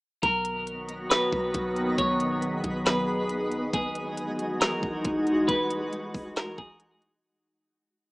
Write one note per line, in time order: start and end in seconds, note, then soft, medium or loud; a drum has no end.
0.23 1.29 B1 loud
0.23 3.70 D#3 medium
0.23 3.70 F#3 medium
0.23 3.70 B3 medium
0.23 1.97 F#4 medium
0.23 1.07 A#4 loud
0.23 7.20 D#5 medium
0.23 1.97 A#5 medium
0.23 kick loud
0.23 closed hi-hat medium
0.45 closed hi-hat medium
0.67 closed hi-hat medium
0.89 closed hi-hat medium
1.10 1.94 B4 medium
1.10 snare loud
1.10 closed hi-hat medium
1.32 1.54 B1 loud
1.32 kick medium
1.54 1.97 B1 loud
1.54 kick loud
1.54 closed hi-hat medium
1.76 closed hi-hat medium
1.98 2.61 B1 loud
1.98 3.72 G#4 medium
1.98 3.72 B4 medium
1.98 2.82 C#5 loud
1.98 kick loud
1.98 closed hi-hat medium
2.20 closed hi-hat medium
2.42 closed hi-hat medium
2.64 3.70 B1 loud
2.64 kick medium
2.64 closed hi-hat medium
2.86 3.27 B4 medium
2.86 snare loud
2.86 closed hi-hat medium
3.29 closed hi-hat medium
3.52 closed hi-hat medium
3.73 4.79 E1 loud
3.73 7.20 E3 medium
3.73 7.20 G#3 medium
3.73 7.20 D#4 medium
3.73 7.20 F#4 medium
3.73 4.57 G#4 loud
3.73 kick loud
3.73 closed hi-hat medium
3.95 closed hi-hat medium
4.17 closed hi-hat medium
4.39 closed hi-hat medium
4.61 5.44 A#4 medium
4.61 snare loud
4.61 closed hi-hat medium
4.83 5.04 E1 loud
4.83 kick medium
5.05 5.47 E1 loud
5.05 kick loud
5.05 closed hi-hat medium
5.27 closed hi-hat medium
5.48 5.83 E1 loud
5.48 6.32 B4 loud
5.48 kick loud
5.48 closed hi-hat medium
5.70 closed hi-hat medium
5.81 5.92 D#1 loud
5.93 closed hi-hat medium
6.14 6.56 E1 loud
6.14 kick medium
6.14 open hi-hat medium
6.36 6.57 A#4 medium
6.36 snare loud
6.36 closed hi-hat medium
6.58 7.21 E1 loud
6.58 6.79 G#4 medium
6.58 kick medium
6.80 closed hi-hat medium
7.02 closed hi-hat medium